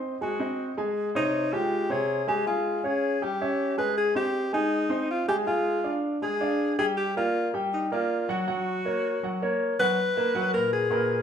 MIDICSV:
0, 0, Header, 1, 3, 480
1, 0, Start_track
1, 0, Tempo, 375940
1, 1230, Time_signature, 4, 2, 24, 8
1, 14328, End_track
2, 0, Start_track
2, 0, Title_t, "Grand piano"
2, 0, Program_c, 0, 0
2, 0, Note_on_c, 0, 60, 64
2, 0, Note_on_c, 0, 72, 64
2, 0, Note_on_c, 0, 75, 65
2, 182, Note_off_c, 0, 60, 0
2, 187, Note_off_c, 0, 72, 0
2, 189, Note_off_c, 0, 75, 0
2, 270, Note_on_c, 0, 56, 69
2, 275, Note_on_c, 0, 68, 72
2, 276, Note_on_c, 0, 80, 69
2, 466, Note_off_c, 0, 56, 0
2, 469, Note_off_c, 0, 68, 0
2, 470, Note_off_c, 0, 80, 0
2, 503, Note_on_c, 0, 60, 73
2, 508, Note_on_c, 0, 72, 68
2, 516, Note_on_c, 0, 75, 71
2, 899, Note_off_c, 0, 60, 0
2, 902, Note_off_c, 0, 72, 0
2, 907, Note_off_c, 0, 75, 0
2, 989, Note_on_c, 0, 56, 80
2, 994, Note_on_c, 0, 68, 79
2, 996, Note_on_c, 0, 80, 83
2, 1383, Note_off_c, 0, 56, 0
2, 1386, Note_off_c, 0, 68, 0
2, 1387, Note_off_c, 0, 80, 0
2, 1470, Note_on_c, 0, 48, 71
2, 1470, Note_on_c, 0, 72, 78
2, 1472, Note_on_c, 0, 73, 75
2, 1864, Note_off_c, 0, 48, 0
2, 1864, Note_off_c, 0, 72, 0
2, 1865, Note_off_c, 0, 73, 0
2, 1949, Note_on_c, 0, 56, 76
2, 1955, Note_on_c, 0, 65, 68
2, 1957, Note_on_c, 0, 79, 73
2, 2343, Note_off_c, 0, 56, 0
2, 2347, Note_off_c, 0, 65, 0
2, 2348, Note_off_c, 0, 79, 0
2, 2419, Note_on_c, 0, 48, 78
2, 2421, Note_on_c, 0, 72, 70
2, 2429, Note_on_c, 0, 73, 74
2, 2817, Note_off_c, 0, 48, 0
2, 2819, Note_off_c, 0, 72, 0
2, 2823, Note_off_c, 0, 73, 0
2, 2904, Note_on_c, 0, 56, 84
2, 2911, Note_on_c, 0, 68, 83
2, 2914, Note_on_c, 0, 80, 83
2, 3103, Note_off_c, 0, 56, 0
2, 3107, Note_off_c, 0, 68, 0
2, 3109, Note_off_c, 0, 80, 0
2, 3146, Note_on_c, 0, 56, 74
2, 3150, Note_on_c, 0, 68, 74
2, 3154, Note_on_c, 0, 80, 66
2, 3541, Note_off_c, 0, 56, 0
2, 3544, Note_off_c, 0, 68, 0
2, 3546, Note_off_c, 0, 80, 0
2, 3622, Note_on_c, 0, 61, 67
2, 3628, Note_on_c, 0, 73, 68
2, 3630, Note_on_c, 0, 77, 66
2, 4019, Note_off_c, 0, 61, 0
2, 4023, Note_off_c, 0, 73, 0
2, 4024, Note_off_c, 0, 77, 0
2, 4108, Note_on_c, 0, 55, 72
2, 4112, Note_on_c, 0, 67, 70
2, 4116, Note_on_c, 0, 79, 72
2, 4306, Note_off_c, 0, 55, 0
2, 4308, Note_off_c, 0, 67, 0
2, 4311, Note_off_c, 0, 79, 0
2, 4354, Note_on_c, 0, 61, 74
2, 4359, Note_on_c, 0, 73, 70
2, 4360, Note_on_c, 0, 76, 70
2, 4746, Note_off_c, 0, 61, 0
2, 4749, Note_off_c, 0, 73, 0
2, 4749, Note_off_c, 0, 76, 0
2, 4820, Note_on_c, 0, 56, 77
2, 4826, Note_on_c, 0, 68, 80
2, 4830, Note_on_c, 0, 80, 79
2, 5218, Note_off_c, 0, 56, 0
2, 5221, Note_off_c, 0, 68, 0
2, 5223, Note_off_c, 0, 80, 0
2, 5300, Note_on_c, 0, 60, 73
2, 5301, Note_on_c, 0, 72, 68
2, 5304, Note_on_c, 0, 75, 70
2, 5698, Note_off_c, 0, 60, 0
2, 5698, Note_off_c, 0, 72, 0
2, 5700, Note_off_c, 0, 75, 0
2, 5779, Note_on_c, 0, 56, 67
2, 5783, Note_on_c, 0, 68, 71
2, 5787, Note_on_c, 0, 80, 69
2, 6177, Note_off_c, 0, 56, 0
2, 6179, Note_off_c, 0, 68, 0
2, 6182, Note_off_c, 0, 80, 0
2, 6249, Note_on_c, 0, 60, 75
2, 6252, Note_on_c, 0, 72, 75
2, 6257, Note_on_c, 0, 75, 73
2, 6651, Note_off_c, 0, 60, 0
2, 6653, Note_off_c, 0, 72, 0
2, 6655, Note_off_c, 0, 75, 0
2, 6743, Note_on_c, 0, 56, 82
2, 6748, Note_on_c, 0, 68, 82
2, 6751, Note_on_c, 0, 80, 79
2, 6942, Note_off_c, 0, 56, 0
2, 6945, Note_off_c, 0, 68, 0
2, 6947, Note_off_c, 0, 80, 0
2, 6979, Note_on_c, 0, 56, 71
2, 6984, Note_on_c, 0, 68, 71
2, 6986, Note_on_c, 0, 80, 70
2, 7376, Note_off_c, 0, 56, 0
2, 7379, Note_off_c, 0, 68, 0
2, 7380, Note_off_c, 0, 80, 0
2, 7454, Note_on_c, 0, 62, 70
2, 7458, Note_on_c, 0, 74, 70
2, 7463, Note_on_c, 0, 77, 67
2, 7853, Note_off_c, 0, 62, 0
2, 7856, Note_off_c, 0, 74, 0
2, 7859, Note_off_c, 0, 77, 0
2, 7942, Note_on_c, 0, 56, 70
2, 7944, Note_on_c, 0, 68, 72
2, 7951, Note_on_c, 0, 80, 66
2, 8141, Note_off_c, 0, 56, 0
2, 8143, Note_off_c, 0, 68, 0
2, 8147, Note_off_c, 0, 80, 0
2, 8179, Note_on_c, 0, 62, 75
2, 8182, Note_on_c, 0, 74, 77
2, 8187, Note_on_c, 0, 77, 73
2, 8576, Note_off_c, 0, 62, 0
2, 8578, Note_off_c, 0, 74, 0
2, 8581, Note_off_c, 0, 77, 0
2, 8665, Note_on_c, 0, 55, 81
2, 8667, Note_on_c, 0, 67, 83
2, 8669, Note_on_c, 0, 79, 86
2, 9060, Note_off_c, 0, 55, 0
2, 9061, Note_off_c, 0, 67, 0
2, 9061, Note_off_c, 0, 79, 0
2, 9150, Note_on_c, 0, 58, 73
2, 9152, Note_on_c, 0, 70, 71
2, 9155, Note_on_c, 0, 74, 71
2, 9542, Note_off_c, 0, 58, 0
2, 9543, Note_off_c, 0, 70, 0
2, 9545, Note_off_c, 0, 74, 0
2, 9623, Note_on_c, 0, 55, 73
2, 9624, Note_on_c, 0, 67, 74
2, 9635, Note_on_c, 0, 79, 75
2, 10018, Note_off_c, 0, 55, 0
2, 10019, Note_off_c, 0, 67, 0
2, 10025, Note_off_c, 0, 79, 0
2, 10109, Note_on_c, 0, 58, 71
2, 10110, Note_on_c, 0, 70, 76
2, 10117, Note_on_c, 0, 74, 79
2, 10501, Note_off_c, 0, 58, 0
2, 10502, Note_off_c, 0, 70, 0
2, 10506, Note_off_c, 0, 74, 0
2, 10581, Note_on_c, 0, 54, 78
2, 10586, Note_on_c, 0, 66, 85
2, 10586, Note_on_c, 0, 78, 82
2, 10780, Note_off_c, 0, 54, 0
2, 10782, Note_off_c, 0, 66, 0
2, 10783, Note_off_c, 0, 78, 0
2, 10818, Note_on_c, 0, 54, 72
2, 10823, Note_on_c, 0, 78, 76
2, 10825, Note_on_c, 0, 66, 67
2, 11214, Note_off_c, 0, 54, 0
2, 11217, Note_off_c, 0, 78, 0
2, 11219, Note_off_c, 0, 66, 0
2, 11302, Note_on_c, 0, 58, 64
2, 11306, Note_on_c, 0, 70, 67
2, 11310, Note_on_c, 0, 73, 67
2, 11696, Note_off_c, 0, 58, 0
2, 11699, Note_off_c, 0, 70, 0
2, 11701, Note_off_c, 0, 73, 0
2, 11786, Note_on_c, 0, 54, 71
2, 11791, Note_on_c, 0, 66, 74
2, 11796, Note_on_c, 0, 78, 65
2, 11983, Note_off_c, 0, 54, 0
2, 11985, Note_off_c, 0, 66, 0
2, 11988, Note_off_c, 0, 78, 0
2, 12030, Note_on_c, 0, 58, 76
2, 12032, Note_on_c, 0, 70, 72
2, 12036, Note_on_c, 0, 73, 76
2, 12421, Note_off_c, 0, 58, 0
2, 12422, Note_off_c, 0, 70, 0
2, 12425, Note_off_c, 0, 73, 0
2, 12503, Note_on_c, 0, 54, 78
2, 12510, Note_on_c, 0, 66, 82
2, 12513, Note_on_c, 0, 78, 76
2, 12700, Note_off_c, 0, 54, 0
2, 12705, Note_off_c, 0, 66, 0
2, 12706, Note_off_c, 0, 78, 0
2, 12981, Note_on_c, 0, 58, 77
2, 12986, Note_on_c, 0, 70, 75
2, 12989, Note_on_c, 0, 71, 78
2, 13179, Note_off_c, 0, 58, 0
2, 13182, Note_off_c, 0, 70, 0
2, 13184, Note_off_c, 0, 71, 0
2, 13212, Note_on_c, 0, 54, 80
2, 13215, Note_on_c, 0, 66, 86
2, 13215, Note_on_c, 0, 78, 78
2, 13414, Note_off_c, 0, 54, 0
2, 13415, Note_off_c, 0, 66, 0
2, 13415, Note_off_c, 0, 78, 0
2, 13457, Note_on_c, 0, 46, 64
2, 13462, Note_on_c, 0, 70, 70
2, 13466, Note_on_c, 0, 71, 72
2, 13853, Note_off_c, 0, 46, 0
2, 13856, Note_off_c, 0, 70, 0
2, 13858, Note_off_c, 0, 71, 0
2, 13923, Note_on_c, 0, 46, 80
2, 13933, Note_on_c, 0, 70, 83
2, 13938, Note_on_c, 0, 71, 78
2, 14325, Note_off_c, 0, 46, 0
2, 14328, Note_off_c, 0, 70, 0
2, 14328, Note_off_c, 0, 71, 0
2, 14328, End_track
3, 0, Start_track
3, 0, Title_t, "Alto saxophone"
3, 0, Program_c, 1, 65
3, 284, Note_on_c, 1, 66, 70
3, 947, Note_off_c, 1, 66, 0
3, 1482, Note_on_c, 1, 63, 84
3, 1955, Note_on_c, 1, 67, 97
3, 1974, Note_off_c, 1, 63, 0
3, 2445, Note_on_c, 1, 68, 85
3, 2464, Note_off_c, 1, 67, 0
3, 2905, Note_off_c, 1, 68, 0
3, 2913, Note_on_c, 1, 67, 85
3, 3135, Note_off_c, 1, 67, 0
3, 3153, Note_on_c, 1, 65, 83
3, 3639, Note_on_c, 1, 68, 80
3, 3658, Note_off_c, 1, 65, 0
3, 4122, Note_on_c, 1, 67, 86
3, 4141, Note_off_c, 1, 68, 0
3, 4822, Note_off_c, 1, 67, 0
3, 4829, Note_on_c, 1, 71, 93
3, 5053, Note_off_c, 1, 71, 0
3, 5075, Note_on_c, 1, 68, 91
3, 5296, Note_off_c, 1, 68, 0
3, 5317, Note_on_c, 1, 67, 96
3, 5760, Note_off_c, 1, 67, 0
3, 5792, Note_on_c, 1, 63, 94
3, 6460, Note_off_c, 1, 63, 0
3, 6521, Note_on_c, 1, 65, 82
3, 6736, Note_off_c, 1, 65, 0
3, 6743, Note_on_c, 1, 67, 91
3, 6853, Note_off_c, 1, 67, 0
3, 6985, Note_on_c, 1, 65, 87
3, 7656, Note_off_c, 1, 65, 0
3, 7949, Note_on_c, 1, 68, 83
3, 8618, Note_off_c, 1, 68, 0
3, 8668, Note_on_c, 1, 68, 88
3, 8776, Note_off_c, 1, 68, 0
3, 8899, Note_on_c, 1, 67, 92
3, 9126, Note_off_c, 1, 67, 0
3, 9154, Note_on_c, 1, 65, 93
3, 9597, Note_off_c, 1, 65, 0
3, 9878, Note_on_c, 1, 63, 69
3, 10096, Note_off_c, 1, 63, 0
3, 10122, Note_on_c, 1, 65, 77
3, 10561, Note_off_c, 1, 65, 0
3, 10601, Note_on_c, 1, 66, 88
3, 12221, Note_off_c, 1, 66, 0
3, 12506, Note_on_c, 1, 71, 101
3, 13413, Note_off_c, 1, 71, 0
3, 13453, Note_on_c, 1, 70, 102
3, 13681, Note_off_c, 1, 70, 0
3, 13696, Note_on_c, 1, 68, 85
3, 14328, Note_off_c, 1, 68, 0
3, 14328, End_track
0, 0, End_of_file